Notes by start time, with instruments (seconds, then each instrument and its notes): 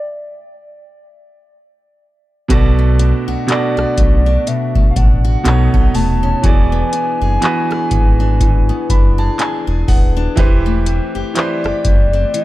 Already playing: soft synth lead D5
2.48 sub bass B1, grand piano B2 B3 F#4 A4, steel-string acoustic guitar B2, kick, closed hi-hat
2.53 grand piano D5
2.79 steel-string acoustic guitar A3
2.99 steel-string acoustic guitar D4, closed hi-hat
3.28 sub bass B1, steel-string acoustic guitar F#4
3.47 grand piano B2 B3 F#4 A4, steel-string acoustic guitar D4, soft synth lead D5, clap, closed hi-hat
3.51 grand piano D5
3.77 sub bass B1, steel-string acoustic guitar F#4, cross-stick
3.98 sub bass B1, steel-string acoustic guitar A3, kick, closed hi-hat
4.26 steel-string acoustic guitar D4
4.47 steel-string acoustic guitar B2, soft synth lead E5, closed hi-hat
4.75 sub bass A1, steel-string acoustic guitar A3, kick
4.91 soft synth lead F5
4.96 sub bass A1, steel-string acoustic guitar D4, soft synth lead F#5, kick, closed hi-hat
5.25 steel-string acoustic guitar F#4
5.43 sub bass B1, grand piano B2 B3 D#4 A4, steel-string acoustic guitar B2, clap, closed hi-hat
5.48 grand piano C#5
5.74 sub bass B1, steel-string acoustic guitar D#4, kick
5.94 sub bass D#1, steel-string acoustic guitar A3, soft synth lead A5, open hi-hat
6.23 steel-string acoustic guitar C#4
6.42 sub bass E1, grand piano E3 B3 F#4 G#4, steel-string acoustic guitar E3, soft synth lead G#5, kick, closed hi-hat
6.46 grand piano D5
6.72 steel-string acoustic guitar B3
6.93 steel-string acoustic guitar D4, closed hi-hat
7.21 sub bass F#1, steel-string acoustic guitar G#4
7.40 grand piano E3 B3 F#4 G#4, steel-string acoustic guitar D4, clap, closed hi-hat
7.45 grand piano B4
7.71 steel-string acoustic guitar G#4, cross-stick
7.91 sub bass G#1, steel-string acoustic guitar B3, kick, closed hi-hat
8.20 steel-string acoustic guitar D4
8.40 steel-string acoustic guitar E3, kick, closed hi-hat
8.69 steel-string acoustic guitar B3
8.90 sub bass F#1, steel-string acoustic guitar D4, grand piano B5, kick, closed hi-hat
9.18 steel-string acoustic guitar G#4, grand piano A5
9.39 steel-string acoustic guitar D4, grand piano G#5, clap, closed hi-hat
9.67 sub bass E1, steel-string acoustic guitar G#4
9.88 sub bass D#1, steel-string acoustic guitar B3, grand piano F#5, kick, open hi-hat
10.17 steel-string acoustic guitar D4
10.36 sub bass E1, grand piano E3 E4 G4 B4, steel-string acoustic guitar E3, kick, closed hi-hat
10.40 grand piano C5
10.66 steel-string acoustic guitar A3
10.86 steel-string acoustic guitar C4, closed hi-hat
11.15 sub bass F#1, steel-string acoustic guitar G4
11.34 grand piano E3 E4 G4 B4, steel-string acoustic guitar C4, soft synth lead D5, clap, closed hi-hat
11.38 grand piano C5
11.64 sub bass F#1, steel-string acoustic guitar G4, cross-stick
11.85 sub bass F#1, steel-string acoustic guitar A3, kick, closed hi-hat
12.13 steel-string acoustic guitar C4
12.34 steel-string acoustic guitar E3, soft synth lead E5, closed hi-hat